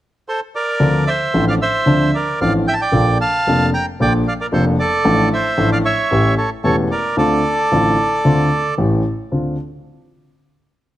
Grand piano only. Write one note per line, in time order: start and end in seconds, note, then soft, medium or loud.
0.80 1.03 D2 medium
0.80 1.03 D3 medium
0.80 1.03 F3 medium
0.80 1.03 C4 soft
0.80 1.03 D4 medium
0.80 1.03 A4 medium
1.34 1.57 A1 medium
1.34 1.57 A2 medium
1.34 1.57 F3 soft
1.34 1.57 C4 soft
1.34 1.57 D4 soft
1.34 1.57 A4 medium
1.86 2.09 D2 medium
1.86 2.09 D3 medium
1.86 2.09 F3 medium
1.86 2.09 C4 medium
1.86 2.10 D4 soft
1.86 2.10 A4 medium
2.41 2.63 A1 medium
2.41 2.64 A2 medium
2.41 2.63 F3 soft
2.41 2.63 C4 soft
2.41 2.63 D4 soft
2.41 2.64 A4 medium
2.92 3.16 A#1 medium
2.92 3.16 A#2 medium
2.92 3.15 F3 medium
2.92 3.15 A#3 medium
2.92 3.16 D4 soft
2.92 3.16 A4 medium
3.47 3.69 F1 medium
3.47 3.69 F2 medium
3.47 3.69 F3 medium
3.47 3.69 A#3 soft
3.47 3.70 D4 soft
3.47 3.70 A4 medium
4.00 4.23 A#1 medium
4.00 4.23 A#2 medium
4.00 4.22 F3 medium
4.00 4.22 A#3 medium
4.00 4.22 D4 soft
4.00 4.23 A4 medium
4.52 4.75 F1 medium
4.52 4.75 F2 medium
4.52 4.75 F3 medium
4.52 4.75 A#3 medium
4.52 4.75 D4 medium
4.52 4.75 A4 medium
5.05 5.28 A1 medium
5.05 5.28 A2 medium
5.05 5.28 F3 medium
5.05 5.28 A3 medium
5.05 5.28 D4 medium
5.05 5.28 A4 medium
5.58 5.81 A1 medium
5.58 5.81 A2 medium
5.58 5.81 F3 soft
5.58 5.81 A3 soft
5.58 5.81 D4 soft
5.58 5.81 A4 medium
6.11 6.34 A1 medium
6.11 6.34 A2 medium
6.11 6.34 E3 medium
6.11 6.34 A3 soft
6.11 6.34 C#4 medium
6.11 6.34 G4 medium
6.64 6.87 E1 medium
6.64 6.87 E2 medium
6.64 6.87 E3 soft
6.64 6.87 A3 soft
6.64 6.87 C#4 soft
6.64 6.87 G4 medium
7.17 7.40 D2 medium
7.17 7.41 D3 medium
7.17 7.40 A3 medium
7.17 7.40 C4 medium
7.17 7.40 F4 medium
7.72 7.94 A1 medium
7.72 7.94 A2 medium
7.72 7.94 D3 soft
7.72 7.94 A3 soft
7.72 7.94 C4 soft
7.72 7.94 F4 medium
8.25 8.47 D2 medium
8.25 8.47 D3 medium
8.25 8.48 A3 soft
8.25 8.47 C4 soft
8.25 8.48 F4 medium
8.78 9.01 A1 medium
8.78 9.01 A2 medium
8.78 9.01 E3 soft
8.78 9.01 A3 soft
8.78 9.01 C#4 soft
8.78 9.01 G4 soft
9.32 9.55 D2 soft
9.32 9.54 C4 soft
9.32 9.54 D4 soft
9.32 9.54 F4 soft